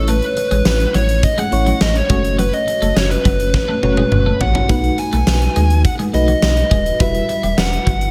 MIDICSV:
0, 0, Header, 1, 7, 480
1, 0, Start_track
1, 0, Tempo, 576923
1, 65, Time_signature, 4, 2, 24, 8
1, 6746, End_track
2, 0, Start_track
2, 0, Title_t, "Lead electric guitar"
2, 0, Program_c, 0, 29
2, 73, Note_on_c, 0, 71, 91
2, 789, Note_off_c, 0, 71, 0
2, 792, Note_on_c, 0, 73, 88
2, 1033, Note_on_c, 0, 75, 97
2, 1036, Note_off_c, 0, 73, 0
2, 1152, Note_off_c, 0, 75, 0
2, 1152, Note_on_c, 0, 78, 105
2, 1508, Note_off_c, 0, 78, 0
2, 1511, Note_on_c, 0, 75, 96
2, 1630, Note_on_c, 0, 73, 88
2, 1631, Note_off_c, 0, 75, 0
2, 1962, Note_off_c, 0, 73, 0
2, 1990, Note_on_c, 0, 71, 93
2, 2099, Note_off_c, 0, 71, 0
2, 2110, Note_on_c, 0, 75, 94
2, 2443, Note_off_c, 0, 75, 0
2, 2471, Note_on_c, 0, 73, 94
2, 2586, Note_off_c, 0, 73, 0
2, 2589, Note_on_c, 0, 71, 86
2, 2942, Note_off_c, 0, 71, 0
2, 2952, Note_on_c, 0, 71, 94
2, 3668, Note_on_c, 0, 78, 99
2, 3690, Note_off_c, 0, 71, 0
2, 3904, Note_off_c, 0, 78, 0
2, 3914, Note_on_c, 0, 78, 96
2, 4152, Note_on_c, 0, 80, 110
2, 4156, Note_off_c, 0, 78, 0
2, 4835, Note_off_c, 0, 80, 0
2, 4872, Note_on_c, 0, 78, 106
2, 4936, Note_off_c, 0, 78, 0
2, 5114, Note_on_c, 0, 75, 105
2, 5827, Note_off_c, 0, 75, 0
2, 5830, Note_on_c, 0, 76, 94
2, 6307, Note_off_c, 0, 76, 0
2, 6310, Note_on_c, 0, 78, 98
2, 6746, Note_off_c, 0, 78, 0
2, 6746, End_track
3, 0, Start_track
3, 0, Title_t, "FM electric piano"
3, 0, Program_c, 1, 5
3, 0, Control_c, 1, 64, 127
3, 0, Note_on_c, 1, 57, 80
3, 0, Note_on_c, 1, 61, 72
3, 0, Note_on_c, 1, 64, 73
3, 0, Note_on_c, 1, 73, 89
3, 591, Note_off_c, 1, 57, 0
3, 593, Note_off_c, 1, 61, 0
3, 594, Note_off_c, 1, 64, 0
3, 596, Note_off_c, 1, 73, 0
3, 1260, Note_on_c, 1, 57, 75
3, 1264, Note_on_c, 1, 61, 70
3, 1269, Note_on_c, 1, 64, 67
3, 1271, Note_on_c, 1, 73, 83
3, 1730, Note_off_c, 1, 57, 0
3, 1735, Note_off_c, 1, 61, 0
3, 1740, Note_off_c, 1, 73, 0
3, 1740, Note_on_c, 1, 57, 83
3, 1742, Note_off_c, 1, 64, 0
3, 1745, Note_on_c, 1, 61, 75
3, 1747, Note_on_c, 1, 66, 75
3, 1750, Note_on_c, 1, 73, 89
3, 1754, Control_c, 1, 64, 0
3, 1908, Control_c, 1, 64, 127
3, 2511, Note_off_c, 1, 57, 0
3, 2513, Note_off_c, 1, 61, 0
3, 2514, Note_off_c, 1, 66, 0
3, 2516, Note_off_c, 1, 73, 0
3, 3179, Note_on_c, 1, 57, 75
3, 3185, Note_on_c, 1, 61, 65
3, 3186, Note_on_c, 1, 66, 67
3, 3188, Note_on_c, 1, 73, 84
3, 3657, Note_off_c, 1, 57, 0
3, 3659, Note_off_c, 1, 61, 0
3, 3660, Note_off_c, 1, 66, 0
3, 3661, Note_off_c, 1, 73, 0
3, 3901, Note_on_c, 1, 57, 72
3, 3904, Note_on_c, 1, 63, 67
3, 3907, Note_on_c, 1, 66, 70
3, 3912, Note_on_c, 1, 71, 84
3, 3916, Control_c, 1, 64, 0
3, 4062, Control_c, 1, 64, 127
3, 4536, Note_off_c, 1, 57, 0
3, 4538, Note_off_c, 1, 63, 0
3, 4539, Note_off_c, 1, 66, 0
3, 4542, Note_off_c, 1, 71, 0
3, 5101, Note_on_c, 1, 57, 78
3, 5106, Note_on_c, 1, 63, 66
3, 5109, Note_on_c, 1, 66, 64
3, 5113, Note_on_c, 1, 71, 79
3, 5578, Note_off_c, 1, 57, 0
3, 5580, Note_off_c, 1, 63, 0
3, 5582, Note_off_c, 1, 66, 0
3, 5584, Note_off_c, 1, 71, 0
3, 5824, Note_on_c, 1, 55, 72
3, 5827, Note_on_c, 1, 64, 66
3, 5831, Note_on_c, 1, 66, 68
3, 5834, Note_on_c, 1, 71, 83
3, 5837, Control_c, 1, 64, 0
3, 6001, Control_c, 1, 64, 127
3, 6458, Note_off_c, 1, 55, 0
3, 6459, Note_off_c, 1, 64, 0
3, 6461, Note_off_c, 1, 66, 0
3, 6463, Note_off_c, 1, 71, 0
3, 6746, End_track
4, 0, Start_track
4, 0, Title_t, "Clean electric guitar"
4, 0, Program_c, 2, 27
4, 67, Note_on_c, 2, 57, 87
4, 133, Note_off_c, 2, 57, 0
4, 426, Note_on_c, 2, 56, 78
4, 492, Note_off_c, 2, 56, 0
4, 786, Note_on_c, 2, 54, 88
4, 852, Note_off_c, 2, 54, 0
4, 1146, Note_on_c, 2, 56, 73
4, 1212, Note_off_c, 2, 56, 0
4, 1385, Note_on_c, 2, 54, 76
4, 1451, Note_off_c, 2, 54, 0
4, 1748, Note_on_c, 2, 56, 66
4, 1814, Note_off_c, 2, 56, 0
4, 1984, Note_on_c, 2, 54, 85
4, 2051, Note_off_c, 2, 54, 0
4, 2346, Note_on_c, 2, 57, 73
4, 2412, Note_off_c, 2, 57, 0
4, 2706, Note_on_c, 2, 54, 78
4, 2772, Note_off_c, 2, 54, 0
4, 3066, Note_on_c, 2, 57, 71
4, 3132, Note_off_c, 2, 57, 0
4, 3307, Note_on_c, 2, 56, 63
4, 3373, Note_off_c, 2, 56, 0
4, 3546, Note_on_c, 2, 57, 73
4, 3613, Note_off_c, 2, 57, 0
4, 3788, Note_on_c, 2, 61, 72
4, 3853, Note_off_c, 2, 61, 0
4, 3906, Note_on_c, 2, 59, 88
4, 3972, Note_off_c, 2, 59, 0
4, 4266, Note_on_c, 2, 57, 79
4, 4332, Note_off_c, 2, 57, 0
4, 4627, Note_on_c, 2, 56, 86
4, 4693, Note_off_c, 2, 56, 0
4, 4984, Note_on_c, 2, 56, 74
4, 5051, Note_off_c, 2, 56, 0
4, 5225, Note_on_c, 2, 54, 78
4, 5292, Note_off_c, 2, 54, 0
4, 5584, Note_on_c, 2, 56, 69
4, 5651, Note_off_c, 2, 56, 0
4, 5825, Note_on_c, 2, 59, 82
4, 5891, Note_off_c, 2, 59, 0
4, 6185, Note_on_c, 2, 55, 72
4, 6251, Note_off_c, 2, 55, 0
4, 6543, Note_on_c, 2, 54, 76
4, 6610, Note_off_c, 2, 54, 0
4, 6746, End_track
5, 0, Start_track
5, 0, Title_t, "Sub bass"
5, 0, Program_c, 3, 38
5, 0, Note_on_c, 3, 33, 93
5, 171, Note_off_c, 3, 33, 0
5, 425, Note_on_c, 3, 33, 97
5, 511, Note_off_c, 3, 33, 0
5, 543, Note_on_c, 3, 33, 93
5, 717, Note_off_c, 3, 33, 0
5, 785, Note_on_c, 3, 33, 94
5, 1044, Note_off_c, 3, 33, 0
5, 1265, Note_on_c, 3, 33, 106
5, 1438, Note_off_c, 3, 33, 0
5, 1506, Note_on_c, 3, 33, 109
5, 1678, Note_off_c, 3, 33, 0
5, 1746, Note_on_c, 3, 30, 100
5, 2091, Note_off_c, 3, 30, 0
5, 2344, Note_on_c, 3, 30, 91
5, 2431, Note_off_c, 3, 30, 0
5, 2462, Note_on_c, 3, 30, 103
5, 2636, Note_off_c, 3, 30, 0
5, 2706, Note_on_c, 3, 30, 98
5, 2965, Note_off_c, 3, 30, 0
5, 3183, Note_on_c, 3, 30, 96
5, 3357, Note_off_c, 3, 30, 0
5, 3423, Note_on_c, 3, 30, 103
5, 3596, Note_off_c, 3, 30, 0
5, 3668, Note_on_c, 3, 33, 85
5, 3840, Note_off_c, 3, 33, 0
5, 3907, Note_on_c, 3, 35, 101
5, 4079, Note_off_c, 3, 35, 0
5, 4269, Note_on_c, 3, 35, 90
5, 4354, Note_off_c, 3, 35, 0
5, 4388, Note_on_c, 3, 35, 100
5, 4560, Note_off_c, 3, 35, 0
5, 4628, Note_on_c, 3, 39, 95
5, 4886, Note_off_c, 3, 39, 0
5, 5106, Note_on_c, 3, 35, 102
5, 5278, Note_off_c, 3, 35, 0
5, 5344, Note_on_c, 3, 35, 107
5, 5517, Note_off_c, 3, 35, 0
5, 5583, Note_on_c, 3, 27, 90
5, 5757, Note_off_c, 3, 27, 0
5, 5826, Note_on_c, 3, 28, 103
5, 5998, Note_off_c, 3, 28, 0
5, 6186, Note_on_c, 3, 28, 92
5, 6272, Note_off_c, 3, 28, 0
5, 6304, Note_on_c, 3, 28, 105
5, 6477, Note_off_c, 3, 28, 0
5, 6546, Note_on_c, 3, 31, 90
5, 6746, Note_off_c, 3, 31, 0
5, 6746, End_track
6, 0, Start_track
6, 0, Title_t, "Muted clean electric guitar strokes"
6, 308, Note_on_c, 9, 29, 48
6, 391, Note_off_c, 9, 29, 0
6, 1267, Note_on_c, 9, 29, 44
6, 1350, Note_off_c, 9, 29, 0
6, 2226, Note_on_c, 9, 29, 48
6, 2309, Note_off_c, 9, 29, 0
6, 3187, Note_on_c, 9, 29, 44
6, 3270, Note_off_c, 9, 29, 0
6, 3667, Note_on_c, 9, 29, 44
6, 3750, Note_off_c, 9, 29, 0
6, 4146, Note_on_c, 9, 29, 46
6, 4229, Note_off_c, 9, 29, 0
6, 5104, Note_on_c, 9, 29, 43
6, 5188, Note_off_c, 9, 29, 0
6, 6064, Note_on_c, 9, 29, 48
6, 6147, Note_off_c, 9, 29, 0
6, 6746, End_track
7, 0, Start_track
7, 0, Title_t, "Drums"
7, 63, Note_on_c, 9, 42, 87
7, 146, Note_off_c, 9, 42, 0
7, 184, Note_on_c, 9, 42, 44
7, 267, Note_off_c, 9, 42, 0
7, 305, Note_on_c, 9, 42, 75
7, 388, Note_off_c, 9, 42, 0
7, 425, Note_on_c, 9, 42, 58
7, 508, Note_off_c, 9, 42, 0
7, 544, Note_on_c, 9, 38, 105
7, 545, Note_on_c, 9, 54, 63
7, 627, Note_off_c, 9, 38, 0
7, 629, Note_off_c, 9, 54, 0
7, 666, Note_on_c, 9, 42, 51
7, 749, Note_off_c, 9, 42, 0
7, 785, Note_on_c, 9, 42, 78
7, 868, Note_off_c, 9, 42, 0
7, 905, Note_on_c, 9, 42, 61
7, 988, Note_off_c, 9, 42, 0
7, 1025, Note_on_c, 9, 36, 96
7, 1025, Note_on_c, 9, 42, 80
7, 1108, Note_off_c, 9, 36, 0
7, 1109, Note_off_c, 9, 42, 0
7, 1147, Note_on_c, 9, 42, 50
7, 1230, Note_off_c, 9, 42, 0
7, 1266, Note_on_c, 9, 42, 67
7, 1349, Note_off_c, 9, 42, 0
7, 1385, Note_on_c, 9, 42, 50
7, 1468, Note_off_c, 9, 42, 0
7, 1504, Note_on_c, 9, 54, 66
7, 1505, Note_on_c, 9, 38, 112
7, 1587, Note_off_c, 9, 54, 0
7, 1588, Note_off_c, 9, 38, 0
7, 1624, Note_on_c, 9, 42, 52
7, 1707, Note_off_c, 9, 42, 0
7, 1742, Note_on_c, 9, 42, 74
7, 1745, Note_on_c, 9, 36, 111
7, 1825, Note_off_c, 9, 42, 0
7, 1828, Note_off_c, 9, 36, 0
7, 1867, Note_on_c, 9, 42, 59
7, 1950, Note_off_c, 9, 42, 0
7, 1986, Note_on_c, 9, 42, 93
7, 2070, Note_off_c, 9, 42, 0
7, 2108, Note_on_c, 9, 42, 48
7, 2191, Note_off_c, 9, 42, 0
7, 2228, Note_on_c, 9, 42, 74
7, 2311, Note_off_c, 9, 42, 0
7, 2347, Note_on_c, 9, 42, 60
7, 2431, Note_off_c, 9, 42, 0
7, 2467, Note_on_c, 9, 38, 100
7, 2469, Note_on_c, 9, 54, 65
7, 2550, Note_off_c, 9, 38, 0
7, 2552, Note_off_c, 9, 54, 0
7, 2589, Note_on_c, 9, 42, 50
7, 2672, Note_off_c, 9, 42, 0
7, 2706, Note_on_c, 9, 36, 101
7, 2708, Note_on_c, 9, 42, 76
7, 2789, Note_off_c, 9, 36, 0
7, 2791, Note_off_c, 9, 42, 0
7, 2826, Note_on_c, 9, 42, 62
7, 2910, Note_off_c, 9, 42, 0
7, 2945, Note_on_c, 9, 36, 91
7, 2946, Note_on_c, 9, 38, 55
7, 3028, Note_off_c, 9, 36, 0
7, 3029, Note_off_c, 9, 38, 0
7, 3187, Note_on_c, 9, 48, 69
7, 3270, Note_off_c, 9, 48, 0
7, 3306, Note_on_c, 9, 48, 66
7, 3389, Note_off_c, 9, 48, 0
7, 3426, Note_on_c, 9, 47, 92
7, 3509, Note_off_c, 9, 47, 0
7, 3666, Note_on_c, 9, 43, 104
7, 3749, Note_off_c, 9, 43, 0
7, 3785, Note_on_c, 9, 43, 95
7, 3869, Note_off_c, 9, 43, 0
7, 3905, Note_on_c, 9, 42, 94
7, 3906, Note_on_c, 9, 36, 116
7, 3988, Note_off_c, 9, 42, 0
7, 3989, Note_off_c, 9, 36, 0
7, 4025, Note_on_c, 9, 42, 46
7, 4108, Note_off_c, 9, 42, 0
7, 4144, Note_on_c, 9, 42, 75
7, 4227, Note_off_c, 9, 42, 0
7, 4264, Note_on_c, 9, 42, 60
7, 4348, Note_off_c, 9, 42, 0
7, 4384, Note_on_c, 9, 38, 105
7, 4386, Note_on_c, 9, 54, 63
7, 4467, Note_off_c, 9, 38, 0
7, 4469, Note_off_c, 9, 54, 0
7, 4506, Note_on_c, 9, 42, 49
7, 4589, Note_off_c, 9, 42, 0
7, 4625, Note_on_c, 9, 42, 76
7, 4709, Note_off_c, 9, 42, 0
7, 4745, Note_on_c, 9, 42, 59
7, 4828, Note_off_c, 9, 42, 0
7, 4864, Note_on_c, 9, 36, 95
7, 4866, Note_on_c, 9, 42, 78
7, 4948, Note_off_c, 9, 36, 0
7, 4949, Note_off_c, 9, 42, 0
7, 4987, Note_on_c, 9, 42, 49
7, 5070, Note_off_c, 9, 42, 0
7, 5107, Note_on_c, 9, 42, 71
7, 5191, Note_off_c, 9, 42, 0
7, 5225, Note_on_c, 9, 42, 51
7, 5308, Note_off_c, 9, 42, 0
7, 5344, Note_on_c, 9, 54, 69
7, 5345, Note_on_c, 9, 38, 111
7, 5428, Note_off_c, 9, 38, 0
7, 5428, Note_off_c, 9, 54, 0
7, 5462, Note_on_c, 9, 42, 50
7, 5546, Note_off_c, 9, 42, 0
7, 5583, Note_on_c, 9, 42, 71
7, 5584, Note_on_c, 9, 36, 96
7, 5666, Note_off_c, 9, 42, 0
7, 5667, Note_off_c, 9, 36, 0
7, 5707, Note_on_c, 9, 42, 59
7, 5791, Note_off_c, 9, 42, 0
7, 5824, Note_on_c, 9, 42, 98
7, 5825, Note_on_c, 9, 36, 126
7, 5908, Note_off_c, 9, 42, 0
7, 5909, Note_off_c, 9, 36, 0
7, 5945, Note_on_c, 9, 42, 46
7, 6028, Note_off_c, 9, 42, 0
7, 6066, Note_on_c, 9, 42, 74
7, 6149, Note_off_c, 9, 42, 0
7, 6185, Note_on_c, 9, 42, 61
7, 6268, Note_off_c, 9, 42, 0
7, 6305, Note_on_c, 9, 38, 113
7, 6307, Note_on_c, 9, 54, 60
7, 6388, Note_off_c, 9, 38, 0
7, 6390, Note_off_c, 9, 54, 0
7, 6429, Note_on_c, 9, 42, 50
7, 6512, Note_off_c, 9, 42, 0
7, 6546, Note_on_c, 9, 36, 100
7, 6546, Note_on_c, 9, 42, 78
7, 6629, Note_off_c, 9, 36, 0
7, 6630, Note_off_c, 9, 42, 0
7, 6666, Note_on_c, 9, 42, 64
7, 6746, Note_off_c, 9, 42, 0
7, 6746, End_track
0, 0, End_of_file